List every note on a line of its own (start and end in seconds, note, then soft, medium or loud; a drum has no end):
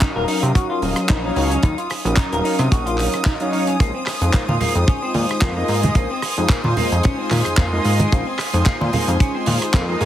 0.00 1.20 F#3 medium
0.00 1.20 C#4 medium
0.00 1.21 D#4 medium
0.00 0.09 D#4 medium
0.00 1.21 A#4 medium
0.00 1.21 F5 medium
0.00 10.05 D#6 medium
0.00 kick loud
0.00 clap loud
0.00 closed hi-hat medium
0.16 0.25 D#1 loud
0.16 0.22 A#4 medium
0.28 0.39 D#4 loud
0.28 open hi-hat loud
0.43 0.52 C3 loud
0.43 closed hi-hat medium
0.55 0.66 F#4 medium
0.55 kick loud
0.55 closed hi-hat medium
0.70 0.79 F4 medium
0.82 0.94 D#1 medium
0.82 open hi-hat loud
0.96 cross-stick medium
0.96 closed hi-hat medium
1.09 1.31 A#1 loud
1.09 1.17 D#4 medium
1.09 kick loud
1.09 clap loud
1.09 closed hi-hat medium
1.24 1.60 F#3 loud
1.24 1.60 C#4 medium
1.24 1.33 D#4 medium
1.24 1.60 D#4 medium
1.24 1.61 C#5 loud
1.24 1.60 F5 medium
1.36 1.58 C#2 medium
1.36 1.47 D#4 loud
1.36 open hi-hat loud
1.51 1.60 C#4 loud
1.51 closed hi-hat medium
1.63 1.75 D#2 loud
1.63 1.76 F#3 medium
1.63 1.76 C#4 medium
1.63 1.74 D#4 medium
1.63 1.76 D#4 medium
1.63 1.77 F4 medium
1.63 1.77 A#4 medium
1.63 kick loud
1.63 closed hi-hat medium
1.78 1.87 F4 medium
1.78 closed hi-hat medium
1.90 cross-stick medium
1.90 open hi-hat loud
2.04 2.15 A#1 loud
2.04 3.36 F#3 medium
2.04 3.37 C#4 medium
2.04 3.37 D#4 medium
2.04 3.37 A#4 medium
2.04 3.37 F5 medium
2.04 closed hi-hat medium
2.16 2.25 D#4 medium
2.16 kick loud
2.16 clap loud
2.16 closed hi-hat loud
2.32 2.42 D#1 loud
2.32 2.38 A#4 medium
2.32 closed hi-hat medium
2.44 2.56 D#4 loud
2.44 open hi-hat loud
2.59 2.69 C3 loud
2.59 cross-stick medium
2.59 closed hi-hat medium
2.71 3.08 A#1 medium
2.71 2.83 F#4 medium
2.71 kick loud
2.71 closed hi-hat loud
2.86 2.95 F4 medium
2.86 closed hi-hat medium
2.98 clap soft
2.98 open hi-hat loud
3.13 cross-stick medium
3.13 closed hi-hat medium
3.25 3.33 D#4 medium
3.25 kick loud
3.25 clap loud
3.25 closed hi-hat medium
3.40 3.76 F#3 loud
3.40 3.77 C#4 medium
3.40 3.49 D#4 medium
3.40 3.77 D#4 medium
3.40 3.77 C#5 loud
3.40 3.77 F5 medium
3.40 closed hi-hat soft
3.53 3.64 D#4 loud
3.53 open hi-hat loud
3.67 3.77 C#4 loud
3.67 closed hi-hat medium
3.79 3.91 A#1 loud
3.79 3.92 G#3 medium
3.79 3.91 A#3 medium
3.79 3.93 C5 medium
3.79 10.05 G#5 medium
3.79 10.05 C6 medium
3.79 kick loud
3.79 closed hi-hat medium
3.95 4.04 C4 medium
4.06 cross-stick medium
4.06 clap soft
4.06 open hi-hat loud
4.21 4.31 F2 loud
4.21 5.53 G#3 medium
4.21 5.53 D#4 medium
4.21 5.53 F4 medium
4.21 5.54 C5 medium
4.21 closed hi-hat medium
4.33 4.41 A#3 medium
4.33 kick loud
4.33 clap loud
4.33 closed hi-hat medium
4.48 4.58 A#2 loud
4.48 4.55 F4 medium
4.48 high conga medium
4.60 4.72 A#3 loud
4.60 open hi-hat loud
4.60 low conga medium
4.75 4.85 F2 loud
4.75 closed hi-hat medium
4.87 4.99 C#4 medium
4.87 kick loud
4.87 closed hi-hat medium
5.02 5.12 C4 medium
5.14 5.26 A#2 medium
5.14 open hi-hat loud
5.14 high conga medium
5.29 cross-stick medium
5.29 closed hi-hat medium
5.41 5.63 F2 loud
5.41 5.49 A#3 medium
5.41 kick loud
5.41 clap loud
5.41 closed hi-hat loud
5.56 5.93 G#3 loud
5.56 5.66 A#3 medium
5.56 5.93 D#4 medium
5.56 5.93 F4 medium
5.56 5.93 D#5 loud
5.68 5.90 G#2 medium
5.68 5.80 A#3 loud
5.68 open hi-hat loud
5.83 5.93 G#3 loud
5.83 closed hi-hat medium
5.83 high conga loud
5.83 low conga medium
5.95 6.07 A#1 loud
5.95 6.09 G#3 medium
5.95 6.07 A#3 medium
5.95 6.09 C#4 medium
5.95 6.09 D#4 medium
5.95 6.09 F4 medium
5.95 6.09 C5 medium
5.95 kick loud
5.95 closed hi-hat medium
6.11 6.20 C4 medium
6.22 cross-stick medium
6.22 open hi-hat loud
6.37 6.47 F2 loud
6.37 7.69 G#3 medium
6.37 7.69 D#4 medium
6.37 7.70 F4 medium
6.37 7.70 C5 medium
6.37 closed hi-hat medium
6.49 6.57 A#3 medium
6.49 kick loud
6.49 clap loud
6.49 closed hi-hat medium
6.64 6.74 A#2 loud
6.64 6.71 F4 medium
6.64 high conga medium
6.77 6.88 A#3 loud
6.77 open hi-hat loud
6.77 low conga medium
6.92 7.01 F2 loud
6.92 closed hi-hat medium
7.03 7.15 C#4 medium
7.03 kick loud
7.03 closed hi-hat medium
7.19 7.28 C4 medium
7.30 7.42 A#2 medium
7.30 clap soft
7.30 open hi-hat loud
7.30 high conga medium
7.45 7.55 F2 soft
7.45 cross-stick medium
7.45 closed hi-hat medium
7.57 7.79 F2 loud
7.57 7.65 A#3 medium
7.57 kick loud
7.57 clap loud
7.57 closed hi-hat medium
7.72 8.09 G#3 loud
7.72 7.82 A#3 medium
7.72 8.09 D#4 medium
7.72 8.09 F4 medium
7.72 8.09 D#5 loud
7.84 8.06 G#2 medium
7.84 7.96 A#3 loud
7.84 open hi-hat loud
8.00 8.09 G#3 loud
8.00 closed hi-hat medium
8.00 high conga loud
8.12 8.24 A#1 loud
8.12 8.25 G#3 medium
8.12 8.23 A#3 medium
8.12 8.25 C#4 medium
8.12 8.25 D#4 medium
8.12 8.25 F4 medium
8.12 8.25 C5 medium
8.12 kick loud
8.12 closed hi-hat medium
8.27 8.36 C4 medium
8.39 cross-stick medium
8.39 clap soft
8.39 open hi-hat loud
8.53 8.63 F2 loud
8.53 9.85 G#3 medium
8.53 9.85 D#4 medium
8.53 9.86 F4 medium
8.53 9.86 C5 medium
8.53 closed hi-hat medium
8.66 8.74 A#3 medium
8.66 kick loud
8.66 clap loud
8.66 closed hi-hat loud
8.81 8.90 A#2 loud
8.81 8.87 F4 medium
8.81 high conga medium
8.93 9.04 A#3 loud
8.93 open hi-hat loud
8.93 low conga medium
9.08 9.17 F2 loud
9.08 closed hi-hat medium
9.20 9.31 C#4 medium
9.20 kick loud
9.20 closed hi-hat medium
9.35 9.44 C4 medium
9.46 9.58 A#2 medium
9.46 open hi-hat loud
9.46 high conga medium
9.62 cross-stick medium
9.62 closed hi-hat medium
9.74 9.95 F2 loud
9.74 9.82 A#3 medium
9.74 kick loud
9.74 clap loud
9.74 closed hi-hat medium
9.89 10.05 G#3 loud
9.89 9.98 A#3 medium
9.89 10.05 D#4 medium
9.89 10.05 F4 medium
9.89 10.05 D#5 loud
10.01 10.05 G#2 medium
10.01 10.05 A#3 loud
10.01 open hi-hat loud